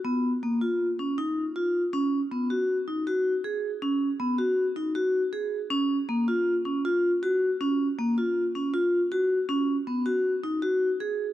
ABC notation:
X:1
M:5/4
L:1/8
Q:1/4=159
K:G#dor
V:1 name="Vibraphone"
B,2 A, E2 C D2 E2 | C2 B, F2 D F2 G2 | C2 B, F2 D F2 G2 | C2 A, E2 C E2 F2 |
C2 A, E2 C E2 F2 | C2 B, F2 D F2 G2 |]